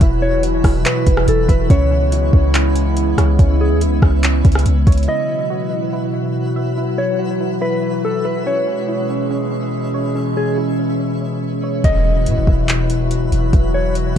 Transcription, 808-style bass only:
0.01 E1
0.64 D#1
1.07 E1
1.28 E1
1.49 E1
1.70 C#2
2.33 C#2
3.18 C#2
3.39 C#2
3.71 D#2
3.87 C#2
4.02 C#2
4.45 C#2
4.66 C#2
4.87 C#2
11.84 E1
12.26 B2
12.37 E1
12.47 E1
13.32 E1
13.53 E1

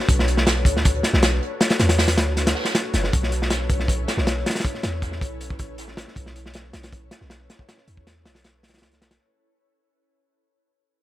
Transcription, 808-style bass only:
0.09 B1
0.65 D2
1.14 B1
1.80 E2
2.18 D2
2.94 F#1
3.13 B1
3.70 B1
4.17 B1
4.84 E2
5.21 B1
5.60 A1
6.16 B1
6.74 B1
7.21 B1
7.88 E2
8.26 B1
8.83 C#2
9.02 B1

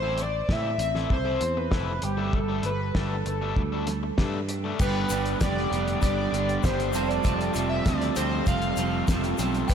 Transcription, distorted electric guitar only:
0.02 E3 C4 E4 A4
0.49 E3 C4 E4 A4
0.95 E3 C4 E4 A4
1.25 E3 C4 E4 A4
1.41 muted distorted electric guitar stroke
1.57 muted distorted electric guitar stroke
1.71 E3 C4 E4 A4
2.17 G3 A3 D4 A4
2.48 G3 A3 D4 A4
2.95 G3 A3 D4 A4
3.42 G3 A3 D4 A4
3.72 G3 A3 D4 A4
3.87 muted distorted electric guitar stroke
4.03 muted distorted electric guitar stroke
4.19 G3 A3 D4 A4
4.64 G3 A3 D4 A4
4.79 G2 D3 G3 B3 D4 G4
5.10 G2 D3 G3 B3 D4 G4
5.39 G2 D3 G3 B3 D4 G4
5.70 G2 D3 G3 B3 D4 G4
6.00 G2 D3 G3 B3 D4 G4
6.31 G2 D3 G3 B3 D4 G4
6.61 G2 D3 G3 B3 D4 G4
6.92 F2 C3 F3 A3 C4 F4
7.22 F2 C3 F3 A3 C4 F4
7.53 F2 C3 F3 A3 C4 F4
7.84 F2 C3 F3 A3 C4 F4
8.16 F2 C3 F3 A3 C4 F4
8.45 F2 C3 F3 A3 C4 F4
8.77 F2 C3 F3 A3 C4 F4
9.07 F2 C3 F3 A3 C4 F4
9.38 F2 C3 F3 A3 C4 F4
9.68 C3 E3 G3 C4 E4

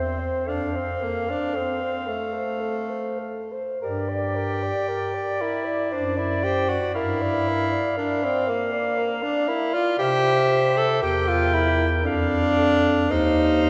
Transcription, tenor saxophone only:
Already playing: C4
0.48 D4
0.76 C4
1.03 A#3
1.29 D4
1.56 C4
2.08 A3
3.83 G4
5.41 E4
5.93 D4
6.18 E4
6.44 G4
6.69 F#4
6.95 E4
7.98 D4
8.25 C4
8.49 A#3
9.22 D4
9.48 E4
9.74 F4
9.99 G4
10.77 A4
11.02 G4
11.28 F4
11.54 E4
12.04 D4
13.11 D#4

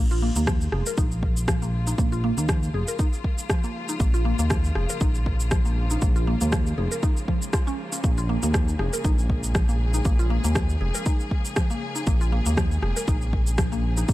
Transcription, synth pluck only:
0.11 F4
0.22 A#3
0.36 A#3
0.47 F3
0.73 G#4
0.87 A#4
0.98 D#4
1.48 F3
1.62 A#3
1.87 D#4
1.98 A#3
2.12 F4
2.24 A#3
2.38 A#3
2.49 F3
2.74 G#4
2.88 A#4
2.99 D#4
3.50 F3
3.64 A#3
3.89 D#4
4.00 A#3
4.14 F4
4.25 A#3
4.39 A#3
4.51 F3
4.76 G#4
4.90 A#4
5.01 D#4
5.51 F3
5.65 A#3
5.91 D#4
6.02 A#3
6.16 F4
6.27 A#3
6.41 A#3
6.53 F3
6.78 G#4
6.91 A#4
7.03 D#4
7.28 F3
7.53 F4
7.67 C#4
7.92 C#4
8.04 A#3
8.18 F4
8.29 A#3
8.43 A#3
8.54 F3
8.79 G#4
8.93 A#4
9.04 D#4
9.55 F3
9.69 A#3
9.94 D#4
10.05 A#3
10.19 F4
10.30 A#3
10.44 A#3
10.56 F3
10.81 G#4
10.95 A#4
11.06 D#4
11.56 F3
11.70 A#3
11.95 D#4
12.07 A#3
12.21 F4
12.32 A#3
12.46 A#3
12.57 F3
12.82 G#4
12.96 A#4
13.08 D#4
13.58 F3
13.72 A#3
13.97 D#4
14.09 A#3

